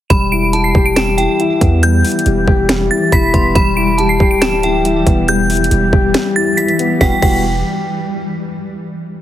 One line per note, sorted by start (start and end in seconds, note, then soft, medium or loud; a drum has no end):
0.10 0.72 E1 loud
0.10 3.52 E3 medium
0.10 0.95 G3 medium
0.10 6.97 G3 medium
0.10 6.97 G4 medium
0.10 0.51 B5 loud
0.10 0.26 E7 medium
0.10 kick loud
0.10 closed hi-hat medium
0.32 1.17 E4 medium
0.32 0.62 D7 medium
0.53 0.73 G4 medium
0.53 1.14 A5 medium
0.53 closed hi-hat medium
0.64 0.80 C7 medium
0.75 1.27 E1 loud
0.75 1.83 G4 loud
0.75 kick medium
0.86 0.94 D7 medium
0.96 1.81 G3 medium
0.96 1.79 E7 medium
0.96 finger snap loud
0.96 snare loud
0.96 closed hi-hat medium
1.18 1.39 E4 medium
1.18 1.38 G5 medium
1.18 closed hi-hat medium
1.40 2.03 E4 loud
1.40 closed hi-hat medium
1.61 2.03 E2 loud
1.61 2.69 B3 medium
1.61 kick medium
1.61 closed hi-hat medium
1.83 2.68 G3 medium
1.83 2.65 G6 loud
1.83 closed hi-hat medium
2.04 2.89 E4 medium
2.04 closed hi-hat soft
2.04 open hi-hat medium
2.12 closed hi-hat medium
2.19 closed hi-hat medium
2.26 2.47 E1 loud
2.26 2.46 G4 medium
2.26 closed hi-hat medium
2.48 2.89 E1 loud
2.48 3.55 G4 loud
2.48 kick loud
2.69 3.54 G3 medium
2.69 finger snap loud
2.69 snare loud
2.69 closed hi-hat medium
2.91 3.11 E4 medium
2.91 3.07 A6 medium
3.12 3.33 E1 loud
3.12 3.55 E4 medium
3.12 3.33 B5 medium
3.12 3.53 B6 medium
3.12 kick loud
3.12 closed hi-hat medium
3.34 3.55 E1 loud
3.34 3.56 B3 medium
3.34 3.54 C6 medium
3.34 kick medium
3.34 closed hi-hat medium
3.55 4.18 E1 loud
3.55 6.97 E3 medium
3.55 4.40 G3 medium
3.55 3.96 B5 loud
3.55 3.72 E7 medium
3.55 kick loud
3.55 closed hi-hat medium
3.77 4.62 E4 medium
3.77 4.07 D7 medium
3.98 4.19 G4 medium
3.98 4.59 A5 medium
3.98 closed hi-hat medium
4.09 4.26 C7 medium
4.20 5.03 D1 loud
4.20 5.28 G4 loud
4.20 kick medium
4.31 4.39 D7 medium
4.42 5.27 G3 medium
4.42 5.24 E7 medium
4.42 finger snap loud
4.42 snare loud
4.42 closed hi-hat medium
4.63 4.84 E4 medium
4.63 4.84 G5 medium
4.63 closed hi-hat medium
4.85 5.48 E4 loud
4.85 closed hi-hat medium
5.06 5.69 E1 loud
5.06 6.14 B3 medium
5.06 kick medium
5.06 closed hi-hat medium
5.28 6.13 G3 medium
5.28 6.11 G6 loud
5.28 closed hi-hat medium
5.50 6.34 E4 medium
5.50 closed hi-hat soft
5.50 open hi-hat medium
5.57 closed hi-hat medium
5.64 closed hi-hat medium
5.71 5.92 E1 loud
5.71 5.91 G4 medium
5.71 closed hi-hat loud
5.93 6.14 E1 loud
5.93 7.01 G4 loud
5.93 kick loud
6.14 6.99 G3 medium
6.14 finger snap medium
6.14 snare loud
6.14 closed hi-hat medium
6.36 6.56 E4 medium
6.36 6.52 A6 medium
6.57 6.99 E4 loud
6.57 6.98 B6 medium
6.57 closed hi-hat medium
6.68 closed hi-hat medium
6.79 6.99 B3 medium
6.79 closed hi-hat medium
7.01 7.13 E1 loud
7.01 7.13 G3 medium
7.01 7.13 B3 medium
7.01 7.13 E4 medium
7.01 7.13 F#4 loud
7.01 7.13 G5 medium
7.01 7.13 B6 medium
7.01 kick loud
7.01 snare medium
7.22 7.63 E1 loud
7.22 7.42 G3 medium
7.22 7.42 B3 medium
7.22 7.42 E4 medium
7.22 7.42 F#4 loud
7.22 7.42 G5 medium
7.22 7.43 B6 medium
7.22 kick loud
7.22 crash medium